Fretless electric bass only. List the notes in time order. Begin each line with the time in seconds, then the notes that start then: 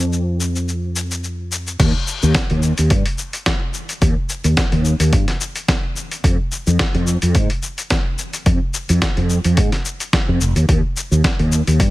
Already playing: F2
1.80 D#2
2.23 D#2
2.51 D#2
2.78 D#2
2.91 G2
4.02 D#2
4.44 D#2
4.72 D#2
5.00 D#2
5.13 G2
6.24 F2
6.67 F2
6.95 F2
7.22 F2
7.35 G#2
8.46 F2
8.89 F2
9.17 F2
9.45 F2
9.58 G#2
10.28 F2
10.41 F1
10.56 D#2
10.69 D#2
11.11 D#2
11.39 D#2
11.67 D#2
11.80 G2